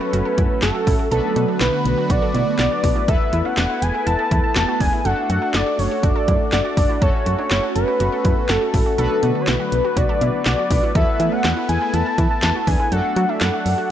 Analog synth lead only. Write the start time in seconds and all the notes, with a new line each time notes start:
Already playing: B4
0.63 A4
1.12 A4
1.61 B4
2.10 D5
2.59 D5
3.09 E5
3.45 F#5
3.82 G#5
4.07 A5
4.43 A5
4.81 G#5
5.05 F#5
5.30 F#5
5.54 D5
5.79 C#5
6.03 D5
6.53 D5
7.02 C#5
7.39 C#5
7.75 B4
8.49 A4
8.98 A4
9.41 C#5
9.47 B4
9.97 D5
10.46 D5
10.95 E5
11.32 F#5
11.69 G#5
11.94 A5
12.31 A5
12.67 G#5
12.92 F#5
13.29 E5
13.41 F#5